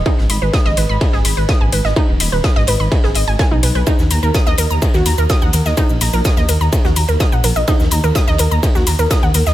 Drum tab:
RD |x-x-x-x-x-x-x-x-|x-x-x-x-x-xxx-xx|x-x-x-x-x-x-x-x-|x-x-x-x-x-xxx-xx|
HH |--o---o---o---o-|--o---o---o---o-|--o---o---o---o-|--o---o---o---o-|
SH |----------------|----------------|xxxxxxxxxxxxxxxx|xxxxxxxxxxxxxxxx|
SD |-o--oo---oo-o--o|----oo---o--o---|-o--oo---oo-o--o|----oo---o--o---|
BD |o---o---o---o---|o---o---o---o---|o---o---o---o---|o---o---o---o---|

RD |x-x-x-x-x-x-x-x-|
HH |--o---o---o---o-|
SH |xxxxxxxxxxxxxxxx|
SD |-o--oo---oo-o--o|
BD |o---o---o---o---|